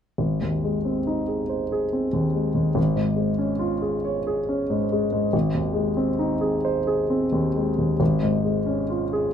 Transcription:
0.18 2.73 G#1 soft
0.41 0.77 D#2 soft
0.64 0.99 G#3 soft
0.85 1.20 C4 soft
1.07 1.42 D#4 soft
1.28 1.63 G#4 soft
1.49 1.85 C5 soft
1.72 2.06 G#4 soft
1.93 2.27 C4 soft
2.13 2.47 D#2 soft
2.34 2.68 G#3 soft
2.55 2.76 D#2 soft
2.75 5.29 G#1 soft
2.96 3.31 G#2 soft
3.16 3.52 G#3 soft
3.39 3.74 C#4 soft
3.59 3.95 F4 soft
3.82 4.18 G#4 soft
4.05 4.40 C#5 soft
4.27 4.62 G#4 soft
4.49 4.84 C#4 soft
4.70 5.05 G#2 soft
4.92 5.26 G#3 soft
5.12 5.33 G#2 soft
5.33 7.96 G#1 medium
5.54 5.89 D#2 soft
5.74 6.10 G#3 soft
5.97 6.33 C4 soft
6.19 6.56 D#4 soft
6.41 6.78 G#4 soft
6.65 7.01 C5 soft
6.87 7.24 G#4 soft
7.10 7.46 C4 soft
7.32 7.68 D#2 soft
7.56 7.91 G#3 soft
7.78 8.00 D#2 soft
8.00 9.34 G#1 medium
8.23 8.59 G#2 soft
8.45 8.81 G#3 soft
8.66 9.04 C#4 soft
8.90 9.28 F4 soft
9.13 9.34 G#4 soft

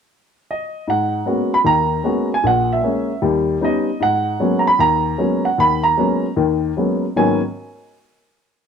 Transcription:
0.51 0.86 D#5 medium
0.87 1.21 G#2 medium
0.87 1.55 F#5 medium
1.26 1.53 G#3 soft
1.26 1.53 A#3 soft
1.26 1.53 B3 soft
1.26 1.53 C#4 soft
1.26 1.53 F#4 soft
1.54 1.59 B5 medium
1.64 1.99 D#2 medium
1.64 1.99 D#3 medium
1.64 2.27 A#5 medium
2.04 2.31 G#3 soft
2.04 2.31 A#3 soft
2.04 2.31 B3 soft
2.04 2.31 C#4 soft
2.04 2.31 F#4 medium
2.34 2.46 G#5 medium
2.44 2.78 A#1 medium
2.44 2.78 A#2 medium
2.44 2.71 F#5 medium
2.73 3.20 E5 medium
2.83 3.10 G#3 soft
2.83 3.10 A#3 soft
2.83 3.11 C#4 medium
3.22 3.56 D#2 medium
3.22 3.56 G3 medium
3.61 3.88 G3 soft
3.61 3.88 B3 soft
3.61 3.88 C#4 soft
3.61 3.89 D#4 medium
3.61 4.00 D#5 medium
4.00 4.35 G#2 medium
4.00 4.62 F#5 medium
4.40 4.67 F#3 soft
4.40 4.67 G#3 soft
4.40 4.67 A#3 soft
4.40 4.67 B3 soft
4.40 4.67 C#4 medium
4.59 4.66 A#5 medium
4.67 4.81 B5 medium
4.79 5.13 D#2 medium
4.79 5.47 A#5 medium
5.18 5.46 F#3 soft
5.18 5.45 G#3 soft
5.18 5.46 A#3 soft
5.18 5.46 B3 soft
5.18 5.46 C#4 medium
5.45 5.59 F#5 medium
5.58 5.92 D#2 medium
5.58 5.83 B5 medium
5.83 6.33 A#5 medium
5.97 6.25 F#3 soft
5.97 6.25 G#3 soft
5.97 6.25 A#3 soft
5.97 6.25 B3 soft
5.97 6.25 C#4 medium
6.36 6.71 D#2 medium
6.36 6.71 D#3 medium
6.77 7.04 F#3 soft
6.77 7.04 G#3 soft
6.77 7.04 A#3 soft
6.77 7.04 B3 soft
6.77 7.04 C#4 medium
7.16 7.39 G#2 medium
7.16 7.39 D#3 medium
7.16 7.39 F#3 medium
7.16 7.39 A#3 medium
7.16 7.40 B3 medium
7.16 7.40 C#4 medium
7.16 7.40 G#5 medium

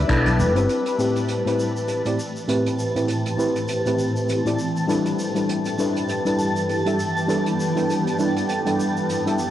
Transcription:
0.00 0.65 G3 medium
0.00 0.65 D4 medium
0.00 0.65 E4 medium
0.00 0.65 B4 medium
0.08 0.41 B1 medium
0.08 0.52 D4 loud
0.08 0.52 E4 medium
0.08 0.52 A4 medium
0.08 0.53 B4 loud
0.08 finger snap medium
0.08 kick medium
0.08 closed hi-hat medium
0.08 shaker medium
0.26 closed hi-hat medium
0.26 high conga medium
0.26 shaker soft
0.39 0.56 E1 medium
0.39 shaker medium
0.55 0.66 G1 medium
0.55 0.96 C4 medium
0.55 0.96 E4 medium
0.55 0.96 G4 medium
0.55 0.97 B4 medium
0.55 closed hi-hat soft
0.55 shaker soft
0.69 5.15 A2 medium
0.69 9.50 E3 medium
0.69 5.15 C4 medium
0.69 9.50 G4 medium
0.69 9.50 A5 medium
0.69 closed hi-hat medium
0.69 shaker soft
0.86 closed hi-hat soft
0.86 shaker soft
0.98 1.42 A2 medium
0.98 1.42 C4 medium
0.98 1.42 E4 medium
0.98 1.42 G4 medium
0.98 1.43 B4 medium
0.98 shaker medium
1.16 closed hi-hat soft
1.16 shaker soft
1.28 closed hi-hat medium
1.28 shaker soft
1.45 2.02 A2 medium
1.45 2.02 C4 medium
1.45 2.02 E4 medium
1.45 2.02 G4 medium
1.45 2.03 B4 medium
1.45 closed hi-hat medium
1.45 shaker soft
1.60 shaker medium
1.77 shaker soft
1.88 closed hi-hat medium
1.88 shaker medium
2.05 2.17 A2 medium
2.05 2.18 C4 medium
2.05 2.18 E4 medium
2.05 2.18 G4 medium
2.05 2.18 D5 medium
2.05 closed hi-hat medium
2.05 shaker soft
2.20 shaker medium
2.36 shaker soft
2.48 2.92 A2 medium
2.48 2.92 C4 medium
2.48 2.92 E4 medium
2.48 2.92 G4 medium
2.48 2.93 B4 medium
2.48 closed hi-hat medium
2.48 shaker medium
2.66 closed hi-hat medium
2.66 shaker soft
2.79 shaker medium
2.95 3.35 A2 medium
2.95 3.36 C4 medium
2.95 3.36 E4 medium
2.95 3.36 G4 medium
2.95 3.36 B4 medium
2.95 closed hi-hat soft
2.95 shaker soft
3.08 closed hi-hat medium
3.08 shaker soft
3.26 closed hi-hat medium
3.26 shaker soft
3.37 3.81 A2 medium
3.37 3.81 C4 medium
3.37 3.82 E4 medium
3.37 3.82 G4 medium
3.37 3.82 B4 medium
3.37 shaker medium
3.56 closed hi-hat soft
3.56 shaker soft
3.68 closed hi-hat medium
3.68 shaker soft
3.85 4.42 A2 medium
3.85 4.42 C4 medium
3.85 4.42 E4 medium
3.85 4.42 G4 medium
3.85 4.43 B4 medium
3.85 closed hi-hat soft
3.85 shaker soft
3.99 shaker medium
4.16 shaker soft
4.29 closed hi-hat medium
4.29 shaker medium
4.45 4.57 A2 medium
4.45 4.57 C4 medium
4.45 4.58 E4 medium
4.45 4.58 G4 medium
4.45 4.58 D5 medium
4.45 closed hi-hat medium
4.45 shaker soft
4.59 shaker medium
4.77 shaker soft
4.87 5.31 G3 medium
4.87 5.32 D4 medium
4.87 5.32 E4 medium
4.87 5.32 A4 medium
4.87 5.33 B4 medium
4.87 closed hi-hat medium
4.87 shaker medium
5.06 closed hi-hat soft
5.06 shaker soft
5.19 9.50 G2 medium
5.19 9.50 B3 medium
5.19 shaker medium
5.35 5.75 G3 medium
5.35 5.76 D4 medium
5.35 5.76 E4 medium
5.35 5.76 A4 medium
5.35 5.76 B4 medium
5.35 closed hi-hat soft
5.35 shaker soft
5.49 closed hi-hat medium
5.49 shaker soft
5.65 closed hi-hat medium
5.65 shaker soft
5.78 6.22 G3 medium
5.78 6.22 D4 medium
5.78 6.22 E4 medium
5.78 6.22 A4 medium
5.78 6.23 B4 medium
5.78 shaker medium
5.96 closed hi-hat soft
5.96 shaker soft
6.09 closed hi-hat medium
6.09 shaker medium
6.25 6.82 G3 medium
6.25 6.82 D4 medium
6.25 6.82 E4 medium
6.25 6.82 A4 medium
6.25 6.83 B4 medium
6.25 closed hi-hat soft
6.25 shaker soft
6.39 shaker medium
6.56 shaker soft
6.69 closed hi-hat medium
6.69 shaker medium
6.86 6.98 G3 medium
6.86 6.98 D4 medium
6.86 6.98 E4 medium
6.86 6.98 A4 medium
6.86 6.99 E5 medium
6.86 closed hi-hat soft
6.86 shaker soft
6.99 shaker medium
7.17 shaker soft
7.27 7.71 G3 medium
7.27 7.72 D4 medium
7.27 7.72 E4 medium
7.27 7.72 A4 medium
7.27 7.72 B4 medium
7.27 closed hi-hat medium
7.27 shaker medium
7.46 closed hi-hat soft
7.46 shaker soft
7.60 shaker medium
7.75 8.15 G3 medium
7.75 8.16 D4 medium
7.75 8.16 E4 medium
7.75 8.16 A4 medium
7.75 8.16 B4 medium
7.75 closed hi-hat soft
7.75 shaker soft
7.90 closed hi-hat medium
7.90 shaker medium
8.07 closed hi-hat medium
8.07 shaker soft
8.18 8.62 G3 medium
8.18 8.62 D4 medium
8.18 8.62 E4 medium
8.18 8.63 A4 medium
8.18 8.63 B4 medium
8.18 shaker medium
8.36 closed hi-hat soft
8.36 shaker soft
8.49 closed hi-hat medium
8.49 shaker soft
8.65 9.22 G3 medium
8.65 9.22 D4 medium
8.65 9.22 E4 medium
8.65 9.22 A4 medium
8.65 9.23 B4 medium
8.65 closed hi-hat soft
8.65 shaker soft
8.80 shaker medium
8.97 shaker soft
9.09 closed hi-hat medium
9.09 shaker medium
9.25 9.38 G3 medium
9.25 9.38 D4 medium
9.25 9.38 E4 medium
9.25 9.38 A4 medium
9.25 9.39 E5 medium
9.25 closed hi-hat soft
9.25 shaker soft
9.39 shaker medium

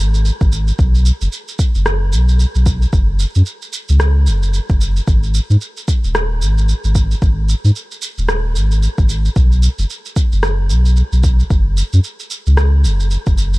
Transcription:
0.00 0.31 G#1 medium
0.14 shaker soft
0.25 shaker soft
0.41 0.72 G#1 medium
0.41 kick loud
0.41 shaker soft
0.52 shaker medium
0.68 shaker soft
0.79 1.11 B1 loud
0.79 kick loud
0.79 shaker soft
0.95 shaker soft
1.06 shaker medium
1.21 1.28 F#1 medium
1.21 shaker soft
1.33 shaker soft
1.48 shaker soft
1.59 kick medium
1.59 shaker medium
1.75 2.15 F#1 medium
1.75 shaker soft
1.86 cross-stick medium
1.86 shaker soft
2.13 2.45 B1 medium
2.13 shaker medium
2.29 shaker soft
2.40 shaker soft
2.55 2.86 B1 medium
2.55 shaker soft
2.66 kick loud
2.66 shaker medium
2.82 shaker soft
2.93 3.25 F#1 medium
2.93 kick loud
2.93 shaker soft
3.20 shaker medium
3.35 3.42 F#2 medium
3.35 shaker soft
3.46 shaker soft
3.62 shaker soft
3.73 shaker medium
3.89 4.29 C#2 medium
3.89 shaker soft
4.00 cross-stick medium
4.00 shaker soft
4.27 4.60 F#1 medium
4.27 shaker medium
4.43 shaker soft
4.54 shaker soft
4.70 5.00 F#1 medium
4.70 kick loud
4.70 shaker soft
4.81 shaker medium
4.96 shaker soft
5.08 5.40 G#1 medium
5.08 kick loud
5.08 shaker soft
5.23 shaker soft
5.34 shaker medium
5.50 5.57 G#2 medium
5.50 shaker soft
5.61 shaker soft
5.77 shaker soft
5.88 kick medium
5.88 shaker medium
6.04 6.43 D#1 medium
6.04 shaker soft
6.15 cross-stick medium
6.15 shaker soft
6.41 6.74 G#1 medium
6.41 shaker medium
6.58 shaker soft
6.69 shaker soft
6.84 7.15 G#1 medium
6.84 shaker soft
6.95 kick loud
6.95 shaker medium
7.11 shaker soft
7.22 7.54 G#1 medium
7.22 kick loud
7.22 shaker soft
7.49 shaker medium
7.64 7.71 G#2 medium
7.64 shaker soft
7.76 shaker soft
7.91 shaker soft
8.02 shaker medium
8.18 8.57 D#1 medium
8.18 shaker soft
8.29 cross-stick medium
8.29 shaker soft
8.56 8.88 G#1 medium
8.56 shaker medium
8.72 shaker soft
8.83 shaker soft
8.98 9.29 G#1 medium
8.98 kick loud
8.98 shaker soft
9.09 shaker medium
9.25 shaker soft
9.36 9.68 B1 medium
9.36 kick loud
9.36 shaker soft
9.52 shaker soft
9.63 shaker medium
9.79 9.85 F#1 medium
9.79 shaker soft
9.90 shaker soft
10.06 shaker soft
10.16 kick medium
10.16 shaker medium
10.32 10.72 F#1 medium
10.32 shaker soft
10.43 cross-stick medium
10.43 shaker soft
10.70 11.03 B1 medium
10.70 shaker medium
10.86 shaker soft
10.97 shaker soft
11.12 11.43 B1 medium
11.12 shaker soft
11.24 kick loud
11.24 shaker medium
11.39 shaker soft
11.50 11.83 F#1 medium
11.50 kick loud
11.50 shaker soft
11.77 shaker medium
11.93 12.00 F#2 medium
11.93 shaker soft
12.04 shaker soft
12.20 shaker soft
12.31 shaker medium
12.46 12.86 C#2 medium
12.46 shaker soft
12.57 cross-stick medium
12.57 shaker soft
12.85 13.17 F#1 medium
12.85 shaker medium
13.00 shaker soft
13.11 shaker soft
13.27 13.57 F#1 medium
13.27 kick loud
13.27 shaker soft
13.38 shaker medium
13.54 shaker soft

